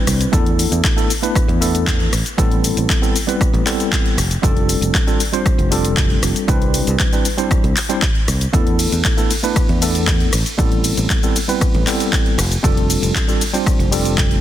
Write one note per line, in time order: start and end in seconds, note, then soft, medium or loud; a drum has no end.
0.00 0.29 G3 medium
0.00 0.30 C4 medium
0.00 0.30 D4 medium
0.00 0.30 E4 medium
0.00 0.30 B4 loud
0.07 0.25 C2 medium
0.07 cross-stick medium
0.07 open hi-hat loud
0.07 shaker medium
0.21 closed hi-hat medium
0.21 shaker soft
0.32 0.65 E2 loud
0.32 0.94 A3 medium
0.32 0.94 B3 medium
0.32 0.94 D4 medium
0.32 0.94 E4 medium
0.32 0.94 A4 loud
0.32 kick loud
0.32 closed hi-hat medium
0.32 shaker soft
0.46 closed hi-hat soft
0.59 open hi-hat loud
0.59 shaker medium
0.72 0.80 E2 loud
0.72 closed hi-hat medium
0.72 shaker soft
0.84 kick loud
0.84 clap loud
0.84 closed hi-hat medium
0.84 shaker soft
0.96 1.10 A3 medium
0.96 1.10 B3 medium
0.96 1.10 D4 medium
0.96 1.11 E4 medium
0.96 1.11 A4 medium
0.96 closed hi-hat soft
0.96 shaker soft
1.10 open hi-hat loud
1.10 shaker medium
1.22 1.58 A3 medium
1.22 1.58 B3 medium
1.22 1.58 D4 medium
1.22 1.58 E4 medium
1.22 1.58 B4 loud
1.22 closed hi-hat medium
1.22 shaker soft
1.35 muted fingered electric bass stroke soft
1.35 kick loud
1.35 cross-stick medium
1.35 closed hi-hat medium
1.35 shaker soft
1.48 2.06 E2 loud
1.48 closed hi-hat soft
1.60 2.11 A3 medium
1.60 2.11 B3 medium
1.60 2.11 D4 medium
1.60 2.11 E4 medium
1.60 2.11 A4 medium
1.60 open hi-hat loud
1.60 shaker medium
1.75 closed hi-hat medium
1.75 shaker soft
1.87 kick loud
1.87 clap loud
1.87 closed hi-hat medium
1.87 shaker soft
2.00 closed hi-hat soft
2.13 2.22 A1 medium
2.13 cross-stick medium
2.13 open hi-hat loud
2.13 shaker medium
2.26 closed hi-hat medium
2.26 shaker soft
2.38 2.70 A1 loud
2.38 2.99 G3 medium
2.38 2.99 B3 medium
2.38 3.00 C4 medium
2.38 3.00 E4 medium
2.38 3.00 A4 loud
2.38 kick loud
2.38 closed hi-hat medium
2.38 shaker soft
2.51 closed hi-hat soft
2.64 open hi-hat loud
2.64 shaker medium
2.77 2.86 A1 loud
2.77 closed hi-hat medium
2.77 shaker soft
2.89 kick loud
2.89 clap loud
2.89 closed hi-hat medium
2.89 shaker soft
3.02 3.15 G3 medium
3.02 3.16 B3 medium
3.02 3.16 C4 medium
3.02 3.16 E4 medium
3.02 3.16 A4 medium
3.02 closed hi-hat soft
3.02 shaker soft
3.16 open hi-hat loud
3.16 shaker medium
3.27 3.63 G3 medium
3.27 3.63 B3 medium
3.27 3.63 C4 medium
3.27 3.63 E4 medium
3.27 3.63 B4 loud
3.27 closed hi-hat medium
3.27 shaker soft
3.41 kick loud
3.41 cross-stick medium
3.41 closed hi-hat medium
3.41 shaker soft
3.53 3.62 A1 loud
3.53 closed hi-hat soft
3.66 4.16 G3 medium
3.66 4.16 B3 medium
3.66 4.16 C4 medium
3.66 4.16 E4 medium
3.66 4.16 A4 loud
3.66 clap medium
3.66 open hi-hat loud
3.66 shaker medium
3.80 closed hi-hat medium
3.80 shaker soft
3.92 kick loud
3.92 clap loud
3.92 closed hi-hat medium
3.92 shaker soft
4.05 closed hi-hat soft
4.17 4.35 F1 loud
4.17 cross-stick medium
4.17 open hi-hat loud
4.17 shaker medium
4.31 closed hi-hat medium
4.31 shaker soft
4.42 4.76 F1 loud
4.42 5.04 G3 medium
4.42 5.04 C4 medium
4.42 5.04 D4 medium
4.42 5.04 F4 medium
4.42 5.05 A4 loud
4.42 kick loud
4.42 closed hi-hat medium
4.42 shaker soft
4.57 closed hi-hat soft
4.69 open hi-hat loud
4.69 shaker medium
4.81 4.90 F1 loud
4.81 closed hi-hat medium
4.81 shaker soft
4.94 kick loud
4.94 clap loud
4.94 closed hi-hat medium
4.94 shaker soft
5.07 5.21 G3 medium
5.07 5.21 C4 medium
5.07 5.21 D4 medium
5.07 5.21 F4 medium
5.07 5.21 A4 medium
5.07 closed hi-hat soft
5.07 shaker soft
5.20 open hi-hat loud
5.20 shaker medium
5.32 5.68 G3 medium
5.32 5.68 C4 medium
5.32 5.68 D4 medium
5.32 5.69 F4 medium
5.32 5.69 C5 loud
5.32 closed hi-hat medium
5.32 shaker soft
5.46 muted fingered electric bass stroke soft
5.46 kick loud
5.46 cross-stick medium
5.46 closed hi-hat medium
5.46 shaker soft
5.58 6.16 F1 loud
5.58 closed hi-hat soft
5.71 6.45 G3 medium
5.71 6.45 C4 medium
5.71 6.45 D4 medium
5.71 6.46 F4 medium
5.71 6.46 A4 loud
5.71 open hi-hat loud
5.71 shaker medium
5.85 closed hi-hat medium
5.85 shaker soft
5.97 kick loud
5.97 clap loud
5.97 closed hi-hat soft
5.97 shaker soft
6.10 closed hi-hat soft
6.23 6.32 F1 medium
6.23 cross-stick medium
6.23 open hi-hat loud
6.23 shaker medium
6.36 closed hi-hat medium
6.36 shaker soft
6.47 6.81 C2 loud
6.47 7.09 G3 medium
6.47 7.09 C4 medium
6.47 7.10 D4 medium
6.47 7.10 E4 medium
6.47 7.10 B4 loud
6.47 kick loud
6.47 closed hi-hat medium
6.47 shaker soft
6.62 closed hi-hat soft
6.74 open hi-hat loud
6.74 shaker medium
6.87 6.96 C2 loud
6.87 closed hi-hat soft
6.87 shaker soft
7.00 kick loud
7.00 clap loud
7.00 closed hi-hat medium
7.00 shaker soft
7.13 7.26 G3 medium
7.13 7.26 C4 medium
7.13 7.26 D4 medium
7.13 7.26 E4 medium
7.13 7.26 B4 medium
7.13 closed hi-hat soft
7.13 shaker soft
7.25 open hi-hat loud
7.25 shaker medium
7.37 7.73 G3 medium
7.37 7.73 C4 medium
7.37 7.73 D4 medium
7.37 7.73 E4 medium
7.37 7.74 C5 loud
7.37 closed hi-hat medium
7.37 shaker soft
7.51 kick loud
7.51 cross-stick medium
7.51 closed hi-hat soft
7.51 shaker soft
7.64 7.73 C2 loud
7.64 closed hi-hat soft
7.77 clap medium
7.77 open hi-hat loud
7.77 shaker medium
7.89 8.03 G3 loud
7.89 8.03 C4 medium
7.89 8.03 D4 medium
7.89 8.03 E4 medium
7.89 8.03 C5 loud
7.89 closed hi-hat medium
7.89 shaker soft
8.02 kick loud
8.02 clap loud
8.02 closed hi-hat medium
8.02 shaker soft
8.15 closed hi-hat soft
8.28 8.46 C2 loud
8.28 cross-stick medium
8.28 open hi-hat loud
8.28 shaker medium
8.41 closed hi-hat medium
8.41 shaker soft
8.53 8.86 E2 loud
8.53 9.14 A3 loud
8.53 9.14 B3 medium
8.53 9.15 D4 medium
8.53 9.15 E4 medium
8.53 9.15 A4 loud
8.53 kick loud
8.53 closed hi-hat medium
8.53 shaker soft
8.67 closed hi-hat soft
8.79 open hi-hat loud
8.79 ride medium
8.79 shaker medium
8.92 9.01 E2 loud
8.92 closed hi-hat medium
8.92 shaker soft
9.05 kick loud
9.05 clap loud
9.05 closed hi-hat medium
9.05 shaker soft
9.17 9.31 A3 medium
9.17 9.31 B3 medium
9.17 9.31 D4 medium
9.17 9.31 E4 medium
9.17 9.31 A4 medium
9.17 closed hi-hat soft
9.17 shaker soft
9.31 open hi-hat loud
9.31 ride medium
9.31 shaker medium
9.43 9.78 A3 medium
9.43 9.79 B3 medium
9.43 9.79 D4 medium
9.43 9.79 E4 medium
9.43 9.79 B4 loud
9.43 closed hi-hat soft
9.43 shaker soft
9.56 muted fingered electric bass stroke soft
9.56 kick loud
9.56 cross-stick medium
9.56 closed hi-hat medium
9.56 shaker soft
9.69 10.27 E2 loud
9.69 closed hi-hat soft
9.81 10.31 A3 medium
9.81 10.31 B3 medium
9.81 10.32 D4 medium
9.81 10.32 E4 medium
9.81 10.32 A4 loud
9.81 open hi-hat loud
9.81 ride medium
9.81 shaker medium
9.95 closed hi-hat medium
9.95 shaker soft
10.07 kick loud
10.07 clap loud
10.07 closed hi-hat soft
10.07 shaker soft
10.20 closed hi-hat soft
10.33 10.42 A1 medium
10.33 cross-stick medium
10.33 open hi-hat loud
10.33 ride medium
10.33 shaker medium
10.46 closed hi-hat medium
10.46 shaker soft
10.58 10.91 A1 loud
10.58 11.19 G3 loud
10.58 11.19 B3 medium
10.58 11.20 C4 medium
10.58 11.20 E4 medium
10.58 11.20 A4 loud
10.58 kick loud
10.58 closed hi-hat medium
10.58 shaker soft
10.72 closed hi-hat soft
10.84 open hi-hat loud
10.84 ride medium
10.84 shaker medium
10.97 11.06 A1 loud
10.97 closed hi-hat medium
10.97 shaker soft
11.10 kick loud
11.10 clap loud
11.10 closed hi-hat medium
11.10 shaker soft
11.23 11.36 G3 medium
11.23 11.36 B3 medium
11.23 11.36 C4 medium
11.23 11.37 E4 medium
11.23 11.37 A4 medium
11.23 closed hi-hat soft
11.23 shaker soft
11.36 open hi-hat loud
11.36 ride medium
11.36 shaker medium
11.48 11.83 G3 medium
11.48 11.84 B3 medium
11.48 11.84 C4 medium
11.48 11.84 E4 medium
11.48 11.84 B4 loud
11.48 closed hi-hat medium
11.48 shaker soft
11.61 kick loud
11.61 cross-stick medium
11.61 closed hi-hat medium
11.61 shaker soft
11.74 11.83 A1 loud
11.74 closed hi-hat soft
11.86 12.36 G3 medium
11.86 12.37 B3 medium
11.86 12.37 C4 medium
11.86 12.37 E4 medium
11.86 12.37 A4 medium
11.86 clap medium
11.86 open hi-hat loud
11.86 ride medium
11.86 shaker medium
12.00 closed hi-hat medium
12.00 shaker soft
12.13 kick loud
12.13 clap loud
12.13 closed hi-hat medium
12.13 shaker soft
12.26 closed hi-hat soft
12.38 12.56 F1 loud
12.38 cross-stick medium
12.38 open hi-hat loud
12.38 ride medium
12.38 shaker medium
12.52 closed hi-hat medium
12.52 shaker soft
12.63 12.96 F1 loud
12.63 13.24 G3 medium
12.63 13.25 C4 medium
12.63 13.25 D4 medium
12.63 13.25 F4 medium
12.63 13.25 A4 loud
12.63 kick loud
12.63 closed hi-hat medium
12.63 shaker medium
12.77 closed hi-hat soft
12.90 open hi-hat loud
12.90 ride medium
12.90 shaker medium
13.02 13.11 F1 loud
13.02 closed hi-hat medium
13.02 shaker soft
13.15 kick loud
13.15 clap loud
13.15 closed hi-hat medium
13.15 shaker soft
13.28 13.41 G3 medium
13.28 13.42 C4 medium
13.28 13.42 D4 medium
13.28 13.42 F4 medium
13.28 13.42 A4 medium
13.28 closed hi-hat soft
13.28 shaker soft
13.41 open hi-hat loud
13.41 ride medium
13.41 shaker medium
13.53 13.89 G3 medium
13.53 13.89 C4 medium
13.53 13.89 D4 medium
13.53 13.89 F4 medium
13.53 13.89 C5 loud
13.53 closed hi-hat medium
13.53 shaker soft
13.66 muted fingered electric bass stroke soft
13.66 kick loud
13.66 cross-stick medium
13.66 closed hi-hat medium
13.66 shaker soft
13.79 14.37 F1 loud
13.79 closed hi-hat soft
13.91 14.41 G3 medium
13.91 14.41 C4 medium
13.91 14.41 D4 medium
13.91 14.41 F4 medium
13.91 14.41 A4 medium
13.91 open hi-hat loud
13.91 ride medium
13.91 shaker medium
14.05 closed hi-hat medium
14.05 shaker soft
14.18 kick loud
14.18 clap loud
14.18 closed hi-hat medium
14.18 shaker soft
14.31 closed hi-hat soft